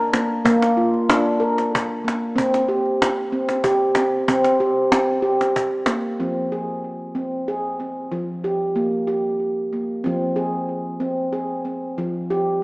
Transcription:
0.00 0.14 A#4 medium
0.13 0.44 A#3 medium
0.13 cajon slap medium
0.45 1.43 A#3 medium
0.45 cajon bass medium
0.62 cajon slap soft
0.77 1.09 F4 medium
0.94 cajon slap soft
1.09 1.41 D4 medium
1.09 cajon bass medium
1.09 cajon slap medium
1.26 cajon slap soft
1.40 2.04 A#4 medium
1.40 cajon slap soft
1.58 cajon slap soft
1.75 cajon bass medium
2.04 2.37 A#3 medium
2.04 cajon slap soft
2.36 2.68 C4 medium
2.36 cajon bass soft
2.54 cajon slap soft
2.68 3.32 G4 medium
2.86 cajon slap soft
3.02 cajon bass medium
3.02 cajon slap medium
3.18 cajon slap soft
3.32 3.64 C4 medium
3.32 cajon slap soft
3.49 cajon slap soft
3.64 3.96 G4 medium
3.64 cajon bass medium
3.95 4.27 C4 medium
3.95 cajon slap medium
4.28 4.90 C4 medium
4.28 cajon bass medium
4.44 cajon slap soft
4.60 4.92 G4 medium
4.92 5.24 C4 medium
4.92 cajon bass medium
4.92 cajon slap medium
5.08 cajon slap soft
5.22 5.87 G4 medium
5.41 cajon slap soft
5.56 cajon bass soft
5.71 cajon slap soft
5.86 6.20 A#3 medium
5.86 cajon slap medium
6.20 7.19 F3 medium
6.20 6.52 C4 medium
6.52 7.16 G#4 medium
7.15 7.48 C4 medium
7.48 7.81 G#4 medium
7.80 8.45 C4 soft
8.12 9.11 F3 medium
8.44 8.77 G4 medium
8.76 9.09 A#3 medium
9.07 9.73 G4 medium
9.73 10.05 A#3 medium
10.04 11.05 F3 medium
10.04 10.37 C4 medium
10.36 11.01 G#4 medium
11.00 11.33 C4 medium
11.33 11.66 G#4 medium
11.65 12.30 C4 soft
11.98 12.63 F3 medium
12.30 12.63 G4 medium

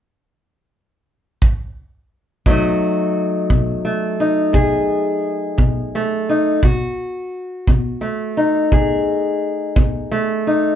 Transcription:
1.42 kick medium
2.46 3.09 B2 medium
2.46 6.60 F#3 medium
2.46 3.84 A3 medium
2.46 4.20 D#4 medium
2.46 4.54 F#4 medium
2.46 kick medium
3.50 4.13 B2 medium
3.50 kick medium
3.85 5.93 A3 soft
4.20 6.28 D#4 medium
4.53 5.16 B2 medium
4.53 6.59 G#4 medium
4.53 kick medium
5.58 6.21 B2 medium
5.58 kick medium
5.95 6.60 A3 medium
6.29 6.59 D#4 soft
6.63 7.26 B2 medium
6.63 8.72 F#4 medium
6.63 kick medium
7.67 8.30 B2 medium
7.67 kick medium
8.01 10.10 A3 soft
8.37 10.46 D#4 medium
8.72 9.35 B2 medium
8.72 10.75 G#4 medium
8.72 kick medium
9.76 10.39 B2 medium
9.76 kick medium
10.11 10.75 A3 medium
10.47 10.75 D#4 medium

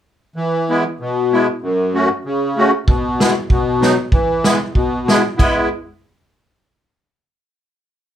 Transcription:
0.36 0.84 E3 medium
0.69 0.83 G#3 soft
0.69 0.84 B3 soft
0.69 0.84 E4 medium
1.00 1.48 B2 medium
1.32 1.46 G#3 medium
1.32 1.47 B3 soft
1.32 1.47 E4 medium
1.62 2.10 F#2 medium
1.94 2.09 A3 medium
1.94 2.09 C#4 medium
1.94 2.09 F#4 medium
2.25 2.72 C#3 medium
2.57 2.71 A3 medium
2.57 2.71 C#4 medium
2.57 2.72 F#4 medium
2.86 3.34 B2 medium
2.86 kick medium
3.20 3.34 G#3 medium
3.20 3.34 B3 soft
3.20 3.34 E4 medium
3.20 snare medium
3.50 3.97 B2 medium
3.50 kick medium
3.81 3.95 F#3 medium
3.81 3.95 B3 medium
3.81 3.96 D#4 medium
3.81 snare soft
4.12 4.59 E3 medium
4.12 kick medium
4.44 4.58 G#3 medium
4.44 4.58 B3 soft
4.44 4.58 E4 medium
4.44 snare medium
4.75 5.23 B2 medium
4.75 kick soft
5.07 5.22 G#3 medium
5.07 5.22 B3 medium
5.07 5.22 E4 medium
5.07 snare medium
5.37 5.69 G#3 medium
5.37 5.69 B3 soft
5.37 5.69 E4 medium
5.37 kick medium
5.37 crash soft

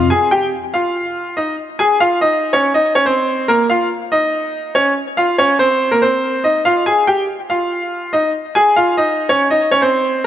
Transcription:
0.00 0.12 F2 loud
0.00 0.12 C3 medium
0.00 0.12 C4 medium
0.10 0.28 G#4 medium
0.10 0.27 G#5 medium
0.31 0.49 G4 medium
0.31 0.48 G5 medium
0.74 1.34 F4 medium
0.74 1.33 F5 medium
1.37 1.54 D#4 medium
1.37 1.54 D#5 medium
1.79 1.97 G#4 medium
1.79 1.96 G#5 medium
2.00 2.18 F4 medium
2.00 2.17 F5 medium
2.21 2.52 D#4 medium
2.21 2.51 D#5 medium
2.53 2.70 C#4 medium
2.53 2.70 C#5 medium
2.74 2.92 D#4 medium
2.74 2.91 D#5 medium
2.95 3.04 C#4 medium
2.95 3.04 C#5 medium
3.06 3.46 C4 medium
3.06 3.46 C5 medium
3.48 3.66 A#3 medium
3.48 3.65 A#4 medium
3.70 3.87 F4 medium
3.70 3.86 F5 medium
4.12 4.72 D#4 medium
4.12 4.71 D#5 medium
4.75 4.92 C#4 medium
4.75 4.92 C#5 medium
5.17 5.35 F4 medium
5.17 5.34 F5 medium
5.38 5.56 C#4 medium
5.38 5.55 C#5 medium
5.59 5.90 C4 medium
5.59 5.89 C5 medium
5.91 6.00 A#3 medium
5.91 6.00 A#4 medium
6.02 6.42 C4 medium
6.02 6.42 C5 medium
6.44 6.61 D#4 medium
6.44 6.61 D#5 medium
6.65 6.83 F4 medium
6.65 6.82 F5 medium
6.86 7.04 G#4 medium
6.86 7.03 G#5 medium
7.07 7.25 G4 medium
7.07 7.24 G5 medium
7.50 8.10 F4 medium
7.50 8.09 F5 medium
8.13 8.30 D#4 medium
8.13 8.30 D#5 medium
8.55 8.73 G#4 medium
8.55 8.72 G#5 medium
8.76 8.94 F4 medium
8.76 8.93 F5 medium
8.97 9.28 D#4 medium
8.97 9.27 D#5 medium
9.29 9.47 C#4 medium
9.29 9.46 C#5 medium
9.50 9.68 D#4 medium
9.50 9.67 D#5 medium
9.71 9.80 C#4 medium
9.71 9.80 C#5 medium
9.82 10.22 C4 medium
9.82 10.22 C5 medium

